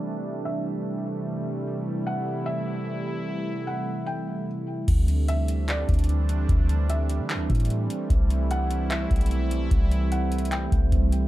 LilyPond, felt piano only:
\new Staff \with { instrumentName = "Felt piano" } { \time 4/4 \key d \mixolydian \tempo 4 = 149 r4 e''2. | r4 fis''4 e''4 r4 | r4 fis''4 g''4 r4 | r4 e''4 d''4 r4 |
r4 e''2. | r4 fis''4 e''4 r4 | r4 fis''4 g''4 r4 | }